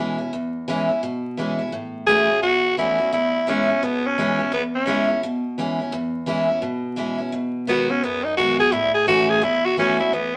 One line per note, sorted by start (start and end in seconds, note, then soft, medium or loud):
0.00 0.30 B2 loud
0.00 0.17 E3 medium
0.00 0.18 G#3 medium
0.00 0.18 C#4 medium
0.00 0.17 E4 medium
0.18 0.33 C#4 soft
0.18 0.31 E4 medium
0.33 1.00 E2 medium
0.68 0.88 E3 loud
0.68 0.88 G#3 loud
0.68 0.89 C#4 loud
0.68 0.88 E4 loud
0.89 1.03 C#4 soft
0.89 1.02 E4 medium
1.03 1.70 B2 medium
1.37 1.58 E3 medium
1.37 1.59 G#3 medium
1.37 1.59 C#4 medium
1.37 1.57 E4 medium
1.59 1.72 C#4 soft
1.59 1.72 E4 medium
1.72 2.40 A2 loud
2.07 2.28 E3 medium
2.07 2.28 A3 loud
2.07 2.29 C#4 loud
2.07 2.29 F#4 loud
2.07 2.40 G#4 loud
2.30 2.43 C#4 soft
2.30 2.42 F#4 medium
2.43 3.10 E2 medium
2.43 2.75 F#4 loud
2.77 2.98 E3 medium
2.77 2.98 A3 medium
2.77 2.99 C#4 medium
2.77 3.10 E4 loud
2.77 2.97 F#4 loud
2.98 3.13 C#4 soft
2.98 3.12 F#4 medium
3.12 3.80 E2 loud
3.12 3.51 E4 loud
3.47 3.68 E3 loud
3.47 3.68 G#3 loud
3.47 3.69 C#4 loud
3.47 3.86 C#4 medium
3.47 3.67 E4 loud
3.68 3.82 C#4 medium
3.68 3.81 E4 medium
3.83 4.50 B2 medium
3.83 4.08 B3 loud
4.06 4.53 C#4 loud
4.18 4.38 E3 medium
4.18 4.39 G#3 medium
4.18 4.39 C#4 loud
4.18 4.38 E4 loud
4.39 4.53 C#4 medium
4.39 4.52 E4 medium
4.52 5.20 E2 medium
4.52 4.63 B3 loud
4.75 5.20 C#4 medium
4.86 5.07 E3 medium
4.86 5.08 G#3 loud
4.86 5.09 C#4 loud
4.86 5.07 E4 loud
5.09 5.23 C#4 soft
5.09 5.22 E4 medium
5.23 5.90 B2 loud
5.58 5.79 E3 medium
5.58 5.79 G#3 medium
5.58 5.79 C#4 medium
5.58 5.78 E4 medium
5.79 5.93 C#4 medium
5.79 5.92 E4 medium
5.92 6.60 E2 loud
6.26 6.48 E3 loud
6.26 6.48 G#3 loud
6.26 6.49 C#4 loud
6.26 6.47 E4 loud
6.49 6.63 C#4 soft
6.49 6.62 E4 medium
6.62 7.30 B2 medium
6.96 7.18 E3 medium
6.96 7.18 G#3 medium
6.96 7.19 C#4 medium
6.96 7.17 E4 medium
7.18 7.33 C#4 soft
7.18 7.32 E4 medium
7.32 8.00 B2 medium
7.67 7.88 D#3 loud
7.67 7.89 G#3 loud
7.67 7.92 B3 loud
7.67 7.89 B3 loud
7.67 7.88 F#4 loud
7.89 8.03 B3 soft
7.89 8.05 C#4 medium
7.89 8.02 F#4 medium
8.04 8.71 F#2 medium
8.04 8.25 B3 loud
8.24 8.37 D#4 loud
8.37 8.59 D#3 medium
8.37 8.59 G#3 medium
8.37 8.59 B3 medium
8.37 8.58 F#4 loud
8.59 8.73 B3 soft
8.59 8.72 F#4 medium
8.59 8.74 G#4 loud
8.72 9.40 A2 loud
8.72 8.94 E4 loud
8.94 9.07 G#4 loud
9.07 9.41 E3 medium
9.07 9.42 A3 loud
9.07 9.42 C#4 loud
9.07 9.31 F#4 loud
9.07 9.43 F#4 loud
9.30 9.45 G#4 loud
9.42 10.10 E2 medium
9.42 9.67 E4 loud
9.65 9.78 F#4 loud
9.77 9.99 E3 medium
9.77 9.99 A3 medium
9.77 9.99 C#4 loud
9.77 10.00 C#4 medium
9.77 9.98 F#4 loud
10.00 10.14 C#4 medium
10.00 10.15 E4 loud
10.00 10.13 F#4 medium
10.13 10.37 E2 medium
10.13 10.37 B3 loud